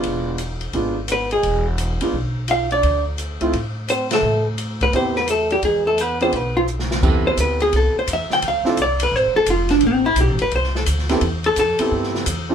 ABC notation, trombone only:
X:1
M:4/4
L:1/8
Q:"Swing" 1/4=172
K:Am
V:1 name="Trombone"
z6 B, ^G,- | ^G, z4 z F D- | D z4 z C A,- | A, z2 B, C B, A, G, |
^G, A, B, C B, F, z2 | z8 | z8 | z8 |
z8 |]